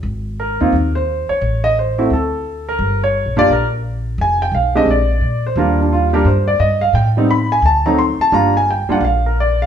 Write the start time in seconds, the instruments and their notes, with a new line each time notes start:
0.03 upright bass G#1
0.40 grand piano A#4
0.60 upright bass D#2, grand piano A#3 C4 D#4 F4
0.72 upright bass D#2
0.95 grand piano C5
1.29 grand piano C#5, muted upright bass stroke
1.41 upright bass A1
1.64 grand piano D#5
1.79 grand piano C5
1.98 grand piano A3 C4 E4 F#4
2.10 upright bass D2, grand piano A4
2.69 grand piano A#4
2.79 upright bass G1
3.04 grand piano C#5
3.26 upright bass A#1
3.37 upright bass F#1, grand piano A#3 D4 F4 G4 D5
3.49 upright bass A#1, grand piano A#4
4.18 upright bass F1, grand piano G#5
4.42 grand piano G5
4.51 upright bass B1, grand piano F5
4.75 grand piano G#3 C4 D4 G4 D#5
4.85 upright bass A#1
4.91 grand piano D5
5.21 upright bass A#2
5.46 grand piano C5
5.56 upright bass D#2, grand piano G3 A#3 D4 F4 A#4
5.81 grand piano D4
5.93 grand piano F4
6.13 grand piano G3 A#3 D4 G4 A#4
6.25 upright bass G2, grand piano C5
6.48 grand piano D5
6.59 upright bass G2, grand piano D#5
6.81 grand piano F5
6.93 upright bass A2, grand piano G5
7.17 grand piano G3 B3 C4 D#4
7.31 grand piano B5
7.52 grand piano G#5
7.62 upright bass D2, grand piano A5
7.86 grand piano F#3 A3 C4 D#4 A#5
7.99 grand piano C6
8.19 grand piano A5, muted upright bass stroke
8.32 upright bass G1, grand piano G3 A#3 D4 F4 A#5
8.57 grand piano G#5
8.71 grand piano G5
8.89 grand piano G3 A#3 D4 F4 F#5, muted upright bass stroke
9.01 upright bass A#1
9.05 grand piano F5
9.26 grand piano A#4
9.40 grand piano D5
9.62 grand piano F5